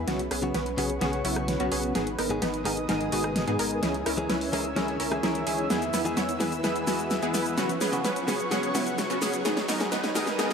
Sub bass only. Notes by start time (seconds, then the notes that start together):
0.08 B1
0.31 B1
0.54 B1
0.78 B1
1.01 B1
1.25 B1
1.60 B1
1.72 B1
1.95 G#1
2.18 G#1
2.42 G#1
2.65 G#1
2.89 G#1
3.12 G#1
3.47 G#2
3.59 G#1
3.82 C#2
4.06 C#2
4.29 C#2
4.53 C#2
4.76 C#2
5.00 C#2
5.23 C#2
5.47 C#2
5.70 E2
5.94 E2
6.17 E2
6.41 E2
6.64 E2
6.87 E2
7.23 E2
7.34 E2
7.58 B1
7.81 B1
8.04 B1
8.28 B1
8.51 B1
8.75 B1
9.10 B1
9.22 B1
9.45 G#1
9.69 G#1
9.92 G#1
10.15 G#1
10.39 G#1